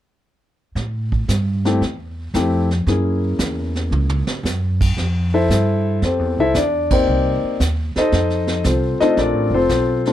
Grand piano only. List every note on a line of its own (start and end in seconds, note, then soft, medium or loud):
1.65 1.80 A3 medium
1.65 1.80 C4 medium
1.65 1.80 E4 medium
1.65 1.80 G4 medium
2.35 2.67 A3 medium
2.35 2.67 C4 soft
2.35 2.67 E4 soft
2.35 2.68 G4 medium
2.88 4.35 A#3 soft
2.88 4.36 C#4 soft
2.88 4.36 E4 soft
2.88 4.36 G#4 soft
5.34 5.99 E4 medium
5.34 5.99 A4 medium
5.34 5.99 C5 medium
5.34 5.99 E5 medium
6.05 6.39 C4 soft
6.05 6.39 G4 soft
6.05 6.39 A4 soft
6.05 6.39 C5 soft
6.40 6.55 E4 medium
6.40 6.55 A4 medium
6.40 6.55 C5 medium
6.40 6.55 E5 medium
6.56 6.91 D4 soft
6.56 6.91 D5 medium
6.91 7.57 A#3 medium
6.91 7.56 C4 medium
6.91 7.57 D#4 medium
6.91 7.56 G4 medium
6.91 7.57 C5 medium
6.91 7.57 D5 medium
7.98 8.62 D#4 medium
7.98 8.62 A4 medium
7.98 8.62 C5 medium
7.98 8.62 D#5 medium
8.66 9.00 C4 soft
8.66 9.01 F4 soft
8.66 9.00 A4 soft
8.66 9.00 C5 medium
9.00 9.67 A3 medium
9.00 9.54 C4 medium
9.00 9.17 D4 medium
9.00 9.17 D#4 medium
9.00 9.53 F4 medium
9.00 9.17 A4 medium
9.00 9.17 C5 medium
9.00 9.17 D#5 medium
9.18 9.53 D4 soft
9.18 9.53 A4 medium
9.18 9.53 A#4 medium
9.18 9.53 D5 medium
9.54 10.06 C4 medium
9.54 10.06 F4 medium
9.54 10.13 A4 medium
9.54 10.13 C5 medium
10.07 10.13 A3 medium
10.07 10.13 C4 soft
10.07 10.13 D4 soft
10.07 10.13 F4 medium